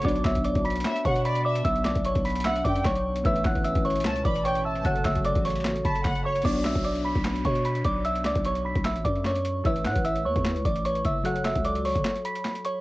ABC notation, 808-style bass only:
X:1
M:4/4
L:1/16
Q:1/4=150
K:Bm
V:1 name="808-style bass" clef=bass
B,,,2 B,,,3 B,,,3 z2 B,,6 | B,,,3 B,,,2 B,,,4- B,,, F,,2 B,,,4 | A,,,2 A,,,3 A,,,3 C,,2 A,,,6 | F,,,2 F,,,3 A,,,4- A,,, F,,,2 F,,,4 |
B,,,3 B,,,4 B,,,3 B,,4 B,,,2- | B,,,2 C,, B,,,4 B,,,2 A,,, F,,6 | A,,,2 A,, A,,,3 E,, E,,2 C,, A,,,4 F,,,2- | F,,,3 C,,4 F,,, z8 |]